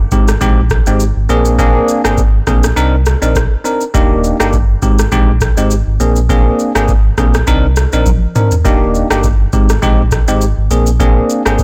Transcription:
0.12 sub bass G#1, tine electric piano G#3 C4 D#4 G4, kick, shaker
0.28 cross-stick, shaker
0.41 sub bass A#1, tine electric piano G#3 C4 D#4 G4, kick, shaker
0.70 kick, cross-stick, shaker
0.87 sub bass G#1, tine electric piano G#3 C4 D#4 G4, shaker
1.00 shaker
1.16 sub bass G#1
1.29 sub bass A#1, tine electric piano A#3 C4 D4 G#4, shaker
1.45 shaker
1.59 tine electric piano A#3 C4 D4 G#4, kick, shaker
1.89 shaker
2.04 sub bass G#1, tine electric piano A#3 C4 D4 G#4, cross-stick, shaker
2.18 kick, shaker
2.47 sub bass A#1, tine electric piano A#3 C4 D4 G#4, kick, cross-stick, shaker
2.64 cross-stick, shaker
2.76 sub bass C2, tine electric piano C4 D4 D#4 A#4, shaker
3.06 cross-stick, shaker
3.22 sub bass A#1, tine electric piano C4 D4 D#4 A#4, shaker
3.36 kick, cross-stick, shaker
3.65 tine electric piano C4 D4 D#4 A#4, shaker
3.81 shaker
3.94 sub bass D#1, tine electric piano A#3 D4 D#4 G4, kick, shaker
4.24 shaker
4.40 sub bass G1, tine electric piano A#3 D4 D#4 G4, cross-stick, shaker
4.53 kick, shaker
4.82 sub bass G#1, tine electric piano G#3 C4 D#4 G4, kick, shaker
4.99 cross-stick, shaker
5.12 sub bass A#1, tine electric piano G#3 C4 D#4 G4, kick, shaker
5.41 kick, cross-stick, shaker
5.57 sub bass G#1, tine electric piano G#3 C4 D#4 G4, shaker
5.71 shaker
5.87 sub bass G#1
6.00 sub bass A#1, tine electric piano A#3 C4 D4 G#4, shaker
6.16 shaker
6.29 tine electric piano A#3 C4 D4 G#4, kick, shaker
6.59 shaker
6.75 sub bass G#1, tine electric piano A#3 C4 D4 G#4, cross-stick, shaker
6.88 kick, shaker
7.18 sub bass A#1, tine electric piano A#3 C4 D4 G#4, kick, cross-stick, shaker
7.34 cross-stick, shaker
7.47 sub bass C2, tine electric piano C4 D4 D#4 A#4, kick, shaker
7.76 cross-stick, shaker
7.93 sub bass A#1, tine electric piano C4 D4 D#4 A#4, shaker
8.06 kick, high tom, shaker
8.36 tine electric piano C4 D4 D#4 A#4, mid tom, shaker
8.51 floor tom, shaker
8.65 sub bass D#1, tine electric piano A#3 D4 D#4 G4, kick, shaker
8.95 shaker
9.10 sub bass G1, tine electric piano A#3 D4 D#4 G4, cross-stick, shaker
9.24 kick, shaker
9.53 sub bass G#1, tine electric piano G#3 C4 D#4 G4, kick, shaker
9.69 cross-stick, shaker
9.82 sub bass A#1, tine electric piano G#3 C4 D#4 G4, kick, shaker
10.12 kick, cross-stick, shaker
10.28 sub bass G#1, tine electric piano G#3 C4 D#4 G4, shaker
10.41 shaker
10.58 sub bass G#1
10.71 sub bass A#1, tine electric piano A#3 C4 D4 G#4, shaker
10.87 shaker
11.00 tine electric piano A#3 C4 D4 G#4, kick, shaker
11.30 shaker
11.45 sub bass G#1, tine electric piano A#3 C4 D4 G#4, cross-stick, shaker
11.59 kick, shaker

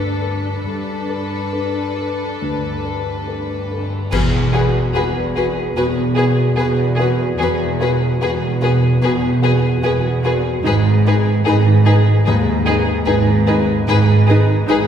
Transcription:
Already playing: grand piano D2 D4 A4 B4, cello section G2, viola section D4, violin section A4 B4
0.21 grand piano A4 B4
0.64 grand piano G2, cello section G2, viola section D4, violin section A4 B4
1.09 grand piano A4 B4
1.52 grand piano D4 A4 B4
1.97 grand piano A4 B4
2.42 grand piano D2
2.86 grand piano A4 B4
3.27 grand piano D4 A4 B4
3.71 grand piano A4 B4
4.11 double bass section E1, cello section E2, grand piano E2, viola section F#4, violin section G#4 B4, concert bass drum, crash
4.53 viola section F#4, grand piano F#4 G#4 B4, violin section G#4 B4
4.94 double bass section E1, cello section E2, viola section F#4, grand piano F#4 G#4 B4, violin section G#4 B4
5.36 viola section F#4, grand piano F#4 G#4 B4, violin section G#4 B4
5.76 double bass section E1, cello section E2, grand piano B2, viola section F#4, violin section G#4 B4
6.16 grand piano F#4 G#4 B4, viola section F#4, violin section G#4 B4
6.57 double bass section E1, cello section E2, grand piano F#4 G#4 B4, viola section F#4, violin section G#4 B4
6.97 viola section F#4, grand piano F#4 G#4 B4, violin section G#4
7.01 violin section B4
7.38 double bass section E1, grand piano E2, cello section E2, viola section F#4, violin section G#4 B4
7.80 viola section F#4, grand piano F#4 G#4 B4, violin section G#4 B4
8.21 double bass section E1, cello section E2, grand piano F#4 G#4 B4, viola section F#4, violin section G#4 B4
8.62 viola section F#4, grand piano F#4 G#4 B4, violin section G#4 B4
9.01 double bass section E1, cello section E2, grand piano B2, viola section F#4, violin section G#4 B4
9.42 grand piano F#4 G#4 B4, viola section F#4, violin section G#4 B4
9.83 double bass section E1, cello section E2, viola section F#4, grand piano F#4 G#4 B4, violin section G#4 B4
10.22 viola section F#4, grand piano F#4 G#4 B4, violin section G#4 B4
10.64 double bass section G#1, grand piano G#2, cello section G#2, viola section D#4, violin section G#4 B4
11.05 viola section D#4, grand piano D#4 G#4 B4, violin section G#4 B4
11.45 double bass section G#1, cello section G#2, viola section D#4, grand piano D#4 G#4 B4, violin section G#4 B4
11.86 viola section D#4, grand piano D#4 G#4 B4, violin section G#4 B4
12.26 double bass section G#1, grand piano D#2, cello section G#2, viola section D#4, violin section G#4 B4
12.67 viola section D#4, grand piano D#4 G#4 B4, violin section G#4 B4
13.06 double bass section G#1, cello section G#2, viola section D#4, grand piano D#4 G#4 B4, violin section G#4 B4
13.47 grand piano D#4 G#4 B4, viola section D#4, violin section G#4 B4
13.87 double bass section G#1, grand piano G#2, cello section G#2, viola section D#4, violin section G#4 B4
14.28 grand piano D#4 G#4 B4, viola section D#4, violin section G#4 B4
14.68 double bass section G#1, cello section G#2, viola section D#4, grand piano D#4 G#4 B4, violin section G#4 B4

